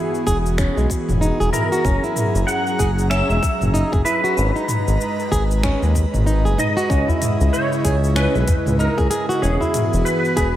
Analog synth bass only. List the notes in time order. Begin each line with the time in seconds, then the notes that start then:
0.27 E1
0.76 B1
1.09 E1
1.40 E1
1.85 F#1
2.35 F#1
2.79 F#1
3.30 E1
3.61 F#1
3.93 F#1
4.37 G#1
4.88 G#1
5.32 G#1
5.82 D#2
6.14 G#1
6.45 F#1
6.90 C#2
7.41 C#2
7.85 C#2
8.35 B1
8.66 C#2
8.98 C#2
9.43 E1
9.93 E1
10.37 E1